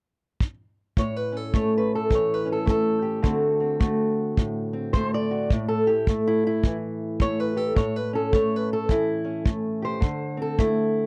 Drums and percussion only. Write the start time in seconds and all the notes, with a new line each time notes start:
0.41 kick
0.97 kick
1.54 kick
2.11 kick
2.67 kick
3.24 kick
3.81 kick
4.37 kick
4.94 kick
5.50 kick
6.07 kick
6.64 kick
7.20 kick
7.77 kick
8.33 kick
8.89 kick
9.46 kick
10.02 kick
10.59 kick